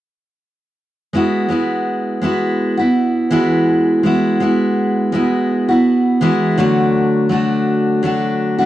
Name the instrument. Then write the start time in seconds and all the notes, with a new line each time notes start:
steel-string acoustic guitar
1.13 G#3 B3 E4 F#4
1.49 G#3 B3 E4 F#4
2.21 G#3 B3 E4 F#4
2.77 B3 E4 F#4
3.31 E3 G#3 B3 E4 F#4
4.03 G#3 B3 E4 F#4
4.40 G#3 B3 E4 F#4
5.12 G#3 B3 E4 F#4
5.69 B3 E4 F#4
6.21 E3 G#3 B3 E4 F#4
6.58 D3 F#3 A3 D4 F#4
7.29 F#3 A3 D4 F#4
8.03 F#3 A3 D4 F#4
8.58 A3 D4 F#4